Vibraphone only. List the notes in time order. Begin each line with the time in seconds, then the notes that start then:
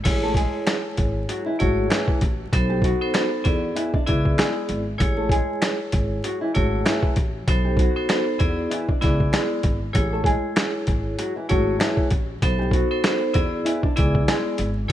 0.04 G#3 E4 G#4 C#5
1.59 A3 E4 G#4 C#5
2.53 B3 D#4 A4 C5
3.01 B3 D#4 A4 C5
3.14 B3 D#4 A4 C5
3.44 B3 E4 G#4 D5
4.06 B3 E4 G#4 D5
4.98 G#3 E4 G#4 C#5
6.54 A3 E4 G#4 C#5
7.48 B3 D#4 A4 C5
7.96 B3 D#4 A4 C5
8.09 B3 D#4 A4 C5
8.39 B3 E4 G#4 D5
9.01 B3 E4 G#4 D5
9.93 G#3 E4 G#4 C#5
11.49 A3 E4 G#4 C#5
12.43 B3 D#4 A4 C5
12.91 B3 D#4 A4 C5
13.04 B3 D#4 A4 C5
13.34 B3 E4 G#4 D5
13.96 B3 E4 G#4 D5
14.88 G#3 E4 G#4 C#5